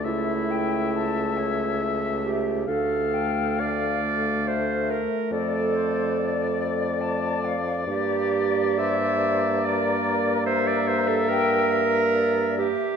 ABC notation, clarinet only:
X:1
M:3/4
L:1/16
Q:1/4=70
K:Dm
V:1 name="Clarinet"
E8 z2 G2 | A4 d4 c2 B2 | A8 z4 | G4 e4 d4 |
c d c A B6 G2 |]